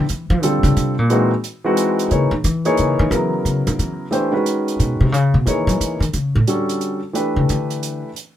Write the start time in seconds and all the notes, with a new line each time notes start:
0.09 E3, closed hi-hat
0.30 F3
0.42 D3 G3 C4 F4 A4, closed hi-hat
0.63 C#3, closed hi-hat
0.76 C3, closed hi-hat
0.99 A#2
1.10 E3 G#3 C4 D#4 F#4, closed hi-hat
1.44 closed hi-hat
1.64 E3 G#3 C4 D#4 F#4
1.77 closed hi-hat
1.99 closed hi-hat
2.10 C#3 E3 A#3 D#4 G#4 C#5, closed hi-hat
2.31 D#3
2.44 E3, closed hi-hat
2.65 E3 A#3 D#4 G#4 C#5, closed hi-hat
2.77 C#3, closed hi-hat
2.99 D#3
3.10 C#3 E3 F#3 B3 E4 A#4, closed hi-hat
3.45 C#3, closed hi-hat
3.67 D#3, closed hi-hat
3.79 E3, closed hi-hat
4.11 E3 A3 D4 G4 C5, closed hi-hat
4.32 D#3 G#3 C#4 F#4 B4
4.46 closed hi-hat
4.68 closed hi-hat
4.79 B2, closed hi-hat
5.00 C3
5.12 C#3, closed hi-hat
5.34 B2
5.46 D#3 E3 A#3 D#4 G#4 C#5, closed hi-hat
5.67 F#3, closed hi-hat
5.81 E3, closed hi-hat
6.00 D#3, closed hi-hat
6.13 C#3, closed hi-hat
6.35 A2
6.47 D3 G3 C#4 F#4 A4, closed hi-hat
6.69 closed hi-hat
6.81 closed hi-hat
7.13 E3 A3 D4 G4 B4, closed hi-hat
7.36 C#3
7.49 D3, closed hi-hat
7.70 closed hi-hat
7.83 closed hi-hat
8.16 closed hi-hat